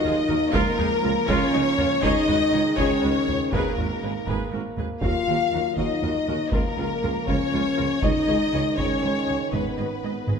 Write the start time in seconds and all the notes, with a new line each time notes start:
Already playing: F#3 A#3 D#4 D#5, impact
0.03 D#2 F4 G#4
0.29 D#2 F#4 A#4, taiko low-mid
0.53 C#2 F3 A#3 F4 A#4, taiko
0.78 C#2 D#4 G#4, taiko low-mid
1.03 C#2 F4 A#4
1.28 C#2 C#4 F4 A#4 C#5, taiko
1.53 C#2 D#4 G#4
1.78 C#2 F4 A#4, taiko low-mid
2.01 C#2 D#3 G#3 D#4 G#4 C#5 D#5, taiko
2.28 C#2 F#4 B4, taiko low-mid
2.53 C#2 G#4 C#5
2.77 C#2 C#4 G#4 C#5, taiko
3.03 C#2 F#4 B4
3.27 C#2 G#4 C#5, taiko low-mid
3.52 G#1 G#2 A#3 G#4 A#4 B4, taiko
3.77 G#1 G#2 F#4 A#4, taiko low-mid
4.02 G#1 G#2 G#4 B4
4.27 G#1 G#2 G#4 B4, taiko
4.52 G#1 G#2 F#4 A#4
4.77 G#1 G#2 G#4 B4, taiko low-mid
5.01 D#2 F#3 F4 F#4 A#4 F5, taiko
5.27 D#2 F#4 A#4
5.52 D#2 F#4 A#4
5.77 D#2 D#4 F#4 A#4 D#5, taiko
6.02 D#2 F#4 A#4
6.27 D#2 F#4 A#4
6.52 C#2 F3 A#3 F4 A#4, taiko
6.77 C#2 F4 A#4
7.02 C#2 F4 A#4
7.27 C#2 C#4 F4 A#4 C#5, taiko
7.52 C#2 F4 A#4
7.78 C#2 F4 A#4
8.01 C#2 D#3 G#3 D#4 G#4 C#5 D#5, taiko
8.27 C#2 G#4 C#5
8.52 C#2 G#4 C#5
8.77 C#2 C#4 G#4 C#5, taiko
9.02 C#2 G#4 C#5
9.28 C#2 G#4 C#5
9.52 G#1 G#2 B3 G#4 B4 D#5, taiko
9.78 G#1 G#2 G#4 D#5
10.02 G#1 G#2 G#4 D#5
10.26 G#1 G#2 G#4 D#5, taiko mid